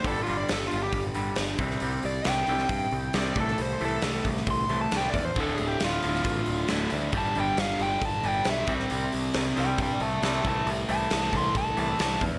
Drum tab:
HH |o-o-o-o-o-o-o-o-|o-o-o-o-o-o-o-o-|o-o-o-o-o-o-o-o-|o-o-o-o-o-o-o-o-|
SD |----o-------o--o|----o--o----o--o|----o--o----o---|----o--o----o---|
BD |o-------o-----o-|--------o-----o-|------o-o-----o-|o-------o-------|

HH |o-o-o-o-o-o-o-o-|o-o-o-o-o-o-o-o-|o-o-o-o-o-o-o-o-|
SD |----o-------o--o|----o-------o---|----o-------o---|
BD |o-------o-----o-|--------o-----o-|------o-o-----o-|